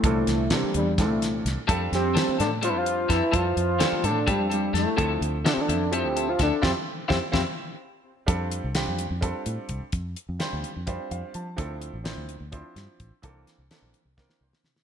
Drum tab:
HH |x-x-x-x-x-x-x-|x-x-x-x-x-x-x-|x-x-x-x-x-x-x-|x-x-x-x-x-x-x-|
SD |--o-o---o-o-o-|--o-o-o-----o-|----o-------o-|----o-------o-|
BD |o-------o-----|o-----------o-|o-------o-----|o-----------o-|

HH |--------------|x-x-x-x-x-x-x-|x-x-x-x-x-x-x-|x-x-x-x-x-x-x-|
SD |o---o-o-------|----o---------|----o---------|----o-----o---|
BD |o---o-o-------|o-------o---o-|o-------o-----|o-------o---o-|

HH |x-x-x-x-------|
SD |--o-o---oo-ooo|
BD |o-------o-----|